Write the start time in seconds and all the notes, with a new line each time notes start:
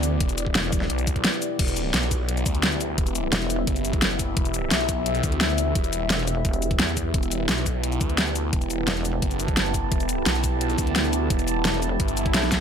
Already playing: D2 B3 E4 G4 D5
0.03 closed hi-hat, cabasa
0.20 E1, kick, closed hi-hat
0.29 closed hi-hat, cabasa
0.38 closed hi-hat, cabasa
0.47 kick
0.55 E1, snare, closed hi-hat
0.64 cabasa
0.72 kick, closed hi-hat, cabasa
0.81 snare
0.90 B1, closed hi-hat
0.99 closed hi-hat, cabasa
1.07 kick, closed hi-hat, cabasa
1.16 kick, closed hi-hat
1.25 snare, closed hi-hat
1.33 cabasa
1.42 closed hi-hat, cabasa
1.59 E1 B3 E4 G4 E5, kick, closed hi-hat, crash
1.68 closed hi-hat, cabasa
1.77 closed hi-hat, cabasa
1.94 B1, snare, closed hi-hat
2.03 cabasa
2.11 kick, closed hi-hat, cabasa
2.29 closed hi-hat
2.37 closed hi-hat, cabasa
2.46 D2, kick, closed hi-hat, cabasa
2.55 closed hi-hat
2.63 snare, closed hi-hat
2.72 cabasa
2.81 closed hi-hat, cabasa
2.98 E1, kick, closed hi-hat
3.07 closed hi-hat, cabasa
3.15 closed hi-hat, cabasa
3.33 E1, snare, closed hi-hat
3.41 cabasa
3.50 closed hi-hat, cabasa
3.67 F#1, kick, closed hi-hat
3.76 closed hi-hat, cabasa
3.85 closed hi-hat, cabasa
3.93 kick, closed hi-hat
4.02 snare, closed hi-hat
4.11 cabasa
4.19 kick, closed hi-hat, cabasa
4.37 E1, kick, closed hi-hat
4.45 closed hi-hat, cabasa
4.54 closed hi-hat, cabasa
4.71 B1, snare, closed hi-hat
4.80 cabasa
4.89 kick, closed hi-hat, cabasa
5.06 closed hi-hat
5.15 closed hi-hat, cabasa
5.23 D2, kick, closed hi-hat, cabasa
5.32 closed hi-hat
5.41 snare, closed hi-hat
5.49 cabasa
5.58 closed hi-hat, cabasa
5.75 E1, kick, closed hi-hat
5.84 closed hi-hat, cabasa
5.93 closed hi-hat, cabasa
6.10 E1, snare, closed hi-hat
6.19 cabasa
6.27 closed hi-hat, cabasa
6.45 E1, kick, closed hi-hat
6.53 closed hi-hat, cabasa
6.62 closed hi-hat, cabasa
6.71 kick, closed hi-hat
6.79 E2, snare, closed hi-hat
6.88 cabasa
6.97 kick, closed hi-hat, cabasa
7.14 E1 A5, kick, closed hi-hat
7.23 closed hi-hat, cabasa
7.32 closed hi-hat, cabasa
7.49 B1, snare, closed hi-hat
7.58 cabasa
7.66 kick, closed hi-hat, cabasa
7.84 closed hi-hat
7.92 closed hi-hat, cabasa
8.01 D2, kick, closed hi-hat, cabasa
8.10 closed hi-hat
8.18 snare, closed hi-hat
8.27 cabasa
8.36 closed hi-hat, cabasa
8.53 E1, kick, closed hi-hat
8.62 closed hi-hat, cabasa
8.70 closed hi-hat, cabasa
8.88 E1, snare, closed hi-hat
8.96 cabasa
9.05 closed hi-hat, cabasa
9.22 F#1, kick, closed hi-hat
9.31 closed hi-hat, cabasa
9.40 closed hi-hat, cabasa
9.48 kick, closed hi-hat
9.57 snare, closed hi-hat
9.66 cabasa
9.74 kick, closed hi-hat, cabasa
9.92 E1, kick, closed hi-hat
10.00 closed hi-hat, cabasa
10.09 closed hi-hat, cabasa
10.26 B1, snare, closed hi-hat
10.35 cabasa
10.44 kick, closed hi-hat, cabasa
10.61 closed hi-hat
10.70 closed hi-hat, cabasa
10.78 D2, kick, closed hi-hat, cabasa
10.87 closed hi-hat
10.96 snare, closed hi-hat
11.04 cabasa
11.13 closed hi-hat, cabasa
11.30 E1, kick, closed hi-hat
11.39 closed hi-hat, cabasa
11.48 closed hi-hat, cabasa
11.65 E1, snare, closed hi-hat
11.74 cabasa
11.82 closed hi-hat, cabasa
12.00 G1, kick, closed hi-hat, swell
12.08 closed hi-hat, cabasa
12.17 closed hi-hat, cabasa
12.26 kick, closed hi-hat
12.34 B1, snare, closed hi-hat
12.43 snare, cabasa
12.52 kick, snare, closed hi-hat, cabasa